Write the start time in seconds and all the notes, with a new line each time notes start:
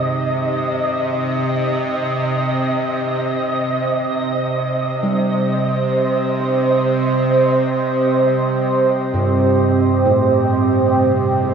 Already playing: C3 C4 D#4 G#4 D#5
3.34 C5
3.53 C4
4.94 G4
5.03 G3
9.14 G2
10.06 A2